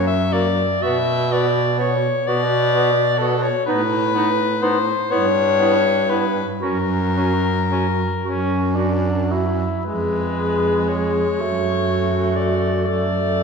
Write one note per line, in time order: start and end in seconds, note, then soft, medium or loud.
0.00 0.65 F#2 medium
0.07 0.34 E5 medium
0.30 0.48 A#3 soft
0.30 0.46 F#4 soft
0.30 0.84 D5 medium
0.82 2.09 B2 medium
0.82 0.99 B3 medium
0.82 0.98 F#4 soft
0.82 1.34 E5 medium
1.30 1.47 B3 soft
1.30 1.46 F#4 soft
1.30 1.79 D5 medium
1.77 1.93 B3 soft
1.77 1.97 F#4 soft
1.77 2.28 C#5 medium
2.26 3.49 B2 medium
2.26 2.42 B3 medium
2.26 2.44 F#4 soft
2.26 3.19 D5 medium
2.74 2.90 B3 medium
2.74 2.90 F#4 medium
3.18 3.35 B3 medium
3.18 3.37 F#4 soft
3.18 3.44 A4 medium
3.42 3.65 C#5 medium
3.66 4.94 A2 medium
3.66 3.82 B3 medium
3.66 3.83 D#4 medium
3.66 4.64 B4 loud
4.14 4.30 B3 medium
4.14 4.31 D#4 medium
4.62 4.78 B3 medium
4.62 4.79 D#4 medium
4.62 5.12 C5 medium
5.11 6.44 G2 medium
5.11 5.27 B3 medium
5.11 5.28 E4 medium
5.11 6.11 C#5 medium
5.59 5.75 B3 medium
5.59 5.77 E4 medium
6.08 6.24 B3 soft
6.08 6.26 E4 soft
6.08 6.47 B4 medium
6.60 8.06 F#2 medium
6.60 6.78 C#4 soft
6.60 6.76 F#4 medium
6.60 9.27 A#4 medium
7.17 7.33 C#4 soft
7.17 7.33 F#4 soft
7.71 7.87 C#4 soft
7.71 7.89 F#4 soft
8.22 9.67 F#2 medium
8.22 8.77 C#4 medium
8.22 8.40 F#4 soft
8.75 9.33 D4 medium
8.75 8.92 F#4 soft
9.29 9.85 E4 soft
9.29 9.45 F#4 soft
9.84 11.36 F2 medium
9.84 11.42 G#3 medium
9.84 11.41 G#4 soft
9.84 10.90 B4 medium
10.88 12.38 C#5 medium
11.39 12.85 F#2 medium
11.39 12.87 A3 soft
11.39 12.85 F#4 soft
12.36 12.84 D5 medium
12.85 13.43 F#2 soft
12.85 13.43 A3 soft
12.85 13.43 A4 soft
12.85 13.43 D5 medium